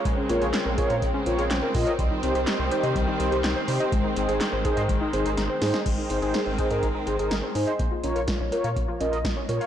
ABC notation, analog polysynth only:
X:1
M:4/4
L:1/16
Q:1/4=124
K:Ab
V:1 name="Analog polysynth"
z2 [FBd] z3 [FBd] z3 [FBd] z3 [FBe] z | z2 [EGc] z3 [EGc] z3 [EGc] z3 [EGc] z | z2 [EAc] z3 [EAc] z3 [EAc] z3 [EAc] z | z2 [EAc] [EAc] z2 [EAc] [EAB] z2 [EAc] [EAB] z2 [EAc] z |
[K:Bbm] z2 [FBd] z3 [FBd] z3 [FBe] z3 [FBd] z |]